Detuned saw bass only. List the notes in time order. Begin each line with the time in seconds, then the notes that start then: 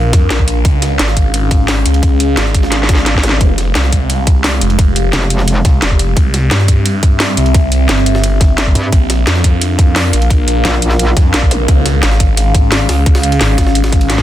Already playing: A#1
0.13 F2
0.30 A#1
0.65 C#2
0.99 G#1
1.86 C#2
2.37 G#1
3.41 F1
3.75 C2
4.61 F1
5.65 C2
5.82 F1
6.17 C2
6.51 G2
7.37 C2
7.89 G1
8.92 A#1
9.27 F2
10.13 A#1
11.17 F2
11.34 A#1
11.68 C#2
12.03 G#1
12.89 C#2
13.41 G#1